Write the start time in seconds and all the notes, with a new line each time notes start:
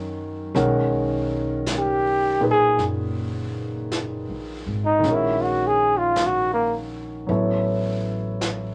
Already playing: F#2 D#3 F#3 G#3 C#4 A#4
0.55 B1 D#3 G#3 C#4 A#4 F#5, brush sweep, snare
1.66 brush sweep, snare, hi-hat pedal
1.78 G4
2.40 A#2 D#4 G#4 B4
2.51 G#4
2.78 F#1, brush sweep, snare
3.92 brush sweep, snare, hi-hat pedal
4.29 A#1
4.67 G#1
4.85 D#4
4.99 D#3 G#3
5.04 A#1 C#4, brush sweep, snare
5.08 F#4 A#4
5.14 E4
5.42 F#4
5.67 G#4
5.98 F4
6.16 brush sweep, snare, hi-hat pedal
6.26 F#4
6.54 A#3
7.27 A1 F#3 B3 E4 A4, brush sweep
7.32 C#5
8.41 brush sweep, snare, hi-hat pedal